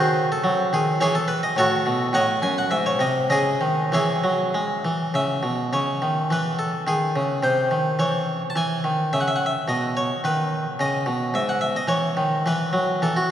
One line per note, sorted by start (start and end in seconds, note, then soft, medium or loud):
0.00 0.28 D#3 medium
0.00 0.28 F#4 medium
0.00 0.28 G#4 medium
0.00 0.24 C5 loud
0.32 0.66 A4 medium
0.44 0.70 F#3 medium
0.73 0.98 D#3 medium
0.73 1.00 G#4 medium
1.00 1.40 E3 medium
1.00 1.14 E4 medium
1.00 1.13 G#4 medium
1.00 1.14 C#5 loud
1.15 1.28 A4 loud
1.28 1.41 B4 loud
1.43 1.56 D#5 medium
1.56 1.83 A2 medium
1.56 2.11 F#4 medium
1.56 2.10 A4 medium
1.56 2.14 C#5 loud
1.86 2.12 B2 medium
2.13 2.40 A2 medium
2.13 2.40 C#5 medium
2.13 2.40 D#5 medium
2.13 2.42 F#5 loud
2.42 2.69 F#2 medium
2.42 2.56 G#5 medium
2.58 2.71 F#5 loud
2.71 2.98 G#2 medium
2.71 2.85 E5 loud
2.86 3.00 C#5 loud
2.99 3.28 C3 medium
2.99 3.29 D#5 medium
3.30 3.59 C#3 medium
3.30 3.89 G#4 medium
3.30 3.83 D#5 loud
3.61 3.90 D#3 medium
3.92 4.21 E3 medium
3.92 4.82 E4 medium
3.92 4.81 G#4 medium
3.92 4.85 C#5 medium
4.24 4.52 F#3 medium
4.54 4.83 G#3 medium
4.85 5.13 E3 medium
5.14 5.42 C#3 medium
5.14 5.64 E5 medium
5.43 5.70 B2 medium
5.73 6.00 C#3 medium
5.73 6.21 C#5 medium
6.02 6.28 D#3 soft
6.30 6.70 E3 medium
6.30 6.55 B4 medium
6.59 6.82 A4 medium
6.87 7.13 D#3 medium
6.87 7.43 G#4 medium
7.16 7.42 C#3 medium
7.43 7.69 C3 medium
7.43 7.91 C5 medium
7.71 7.98 D#3 soft
7.99 8.40 E3 medium
7.99 8.49 C#5 medium
8.50 8.56 A5 medium
8.56 8.83 E3 medium
8.56 9.13 G#5 medium
8.84 9.11 D#3 medium
9.13 9.53 C#3 medium
9.13 9.20 E5 medium
9.21 9.28 F#5 medium
9.28 9.36 E5 medium
9.36 9.44 F#5 medium
9.46 9.69 E5 medium
9.68 10.08 B2 medium
9.68 9.96 D#5 medium
9.97 10.20 C#5 medium
10.24 10.64 D#3 medium
10.24 10.72 B4 medium
10.79 11.06 C#3 medium
10.79 11.27 D#5 medium
11.06 11.33 B2 medium
11.34 11.74 G#2 medium
11.34 11.48 E5 medium
11.49 11.62 F#5 medium
11.61 11.75 E5 medium
11.76 11.90 D#5 medium
11.88 12.15 E3 medium
11.88 12.36 C#5 loud
12.17 12.44 D#3 medium
12.46 12.72 E3 medium
12.46 13.02 B4 medium
12.73 12.99 F#3 medium
13.02 13.31 E3 medium
13.02 13.16 A4 medium
13.17 13.29 F#4 medium